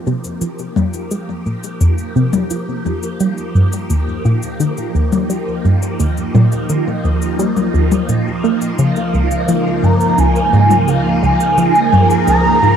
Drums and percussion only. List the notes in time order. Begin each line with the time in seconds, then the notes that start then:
0.24 shaker
0.41 shaker
0.59 shaker
0.76 high tom
0.94 shaker
1.11 shaker
1.63 shaker
1.81 shaker
1.98 shaker
2.33 high tom, shaker
2.50 shaker
3.03 shaker
3.20 shaker
3.38 shaker
3.73 shaker
3.90 shaker
4.43 shaker
4.60 shaker
4.78 shaker
5.12 high tom, shaker
5.30 shaker
5.82 shaker
6.00 shaker
6.17 shaker
6.35 high tom
6.52 shaker
6.69 shaker
7.22 shaker
7.39 shaker
7.57 high tom, shaker
7.91 high tom, shaker
8.09 shaker
8.61 shaker
8.79 shaker
8.96 shaker
9.31 shaker
9.48 shaker
10.01 shaker
10.18 shaker
10.36 shaker
10.71 high tom, shaker
10.88 shaker
11.40 shaker
11.58 shaker
11.75 shaker
11.93 high tom
12.10 shaker
12.28 shaker